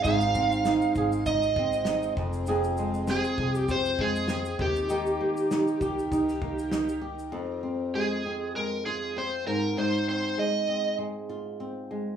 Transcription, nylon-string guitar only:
X:1
M:4/4
L:1/8
Q:"Swing 16ths" 1/4=99
K:Ab
V:1 name="Nylon-string guitar"
[A,,CEA] C E A E C E F,, | [F,,A] A, C A C A, C E, | [E,G] B, E G E B, E G | F,, C A, C A, F C A,, |
A,, C A, C A, F C A, |]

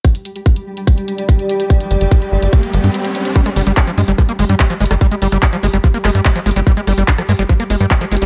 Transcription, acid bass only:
X:1
M:4/4
L:1/16
Q:1/4=145
K:Cm
V:1 name="Acid bass" clef=bass
z16 | z16 | G, A, G, G, D F, A, G, F, B, A, G, G, F, A, G, | G, A, G, G, D F, A, G, F, B, A, G, G, F, A, G, |
G, A, G, G, D F, A, G, F, B, A, G, G, F, A, G, |]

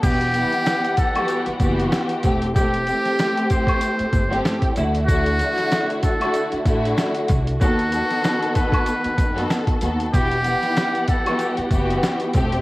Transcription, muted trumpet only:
X:1
M:4/4
L:1/16
Q:"Swing 16ths" 1/4=95
K:Em
V:1 name="Muted trumpet"
G6 A3 z6 z | G6 c6 z4 | F6 A3 z6 z | F6 B6 z4 |
G6 A3 z6 z |]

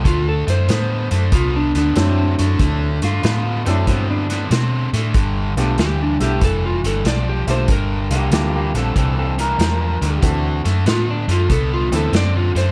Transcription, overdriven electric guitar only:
X:1
M:4/4
L:1/8
Q:"Swing" 1/4=94
K:G
V:1 name="Overdriven electric guitar" clef=bass
[D,A,] [D,A,] [D,B,] [D,A,] [D,B,] [D,B,] [D,C] [D,A,] | [D,A,] [D,A,] [D,B,] [D,A,] [D,B,] [D,B,] [D,C] [D,A,] | [G,,D,] [G,,D,] [G,,E,] [G,,D,] [G,,E,] [G,,E,] [G,,=F,] [G,,D,] | [G,,D,] [G,,D,] [G,,E,] [G,,D,] [G,,E,] [G,,E,] [G,,=F,] [G,,D,] |
[D,A,] [D,A,] [D,B,] [D,A,] [D,B,] [D,B,] [D,C] [D,A,] |]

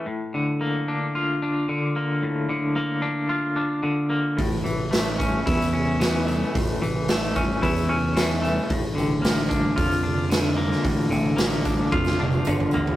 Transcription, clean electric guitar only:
X:1
M:4/4
L:1/8
Q:1/4=111
K:none
V:1 name="Clean electric guitar"
A,, D, _B, D F D D, B, | A,, D, _B, D F D D, B, | A,, E, A, ^C E C E, A, | A,, E, A, ^C E C E, A, |
A,, D, _B, D F D D, B, | A,, D, _B, D F D D, B, |]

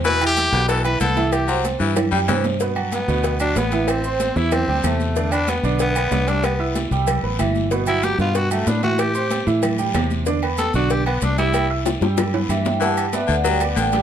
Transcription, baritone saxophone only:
X:1
M:4/4
L:1/8
Q:1/4=188
K:G
V:1 name="Baritone saxophone" clef=bass
E,3 D, E,2 D,2- | D, F,2 E,2 G, E,2 | z8 | z8 |
z8 | z8 | z8 | z8 |
z8 | z8 | E,3 D, F,2 D,2 |]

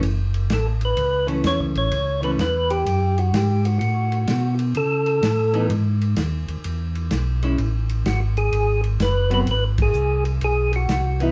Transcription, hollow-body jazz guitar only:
X:1
M:4/4
L:1/8
Q:"Swing" 1/4=127
K:F#dor
V:1 name="Hollow-body jazz guitar"
z4 z [E,A,C]3 | z [E,A,C] z6 | z6 z [E,B,D] | z6 z [G,CE] |
z6 z [F,B,^B,] | z6 z [E,B,D] |]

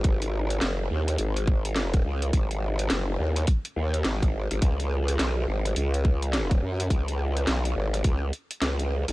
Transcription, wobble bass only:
X:1
M:4/4
L:1/16
Q:"Swing 16ths" 1/4=105
K:G#m
V:1 name="Wobble bass" clef=bass
G,,,4 F,,,2 D,,2 G,,,6 C,,2 | G,,,4 F,,,2 D,,2 z2 D,,2 G,,,3 G,,, | C,,4 B,,,2 G,,,2 C,,6 F,,2 | C,,4 B,,,2 G,,,2 C,,2 z2 C,,3 G,,, |]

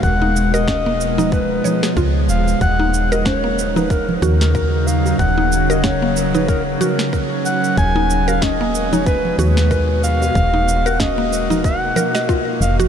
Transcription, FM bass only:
X:1
M:4/4
L:1/8
Q:"Swing 16ths" 1/4=93
K:Abdor
V:1 name="FM bass" clef=bass
E,,,4- E,,, z D,, E,,, | E,,,4- E,,, E,,3 | E,,,4- E,,, z3 | E,,,4- E,,, E,,3 |
E,,,4- E,,, z2 F,,, |]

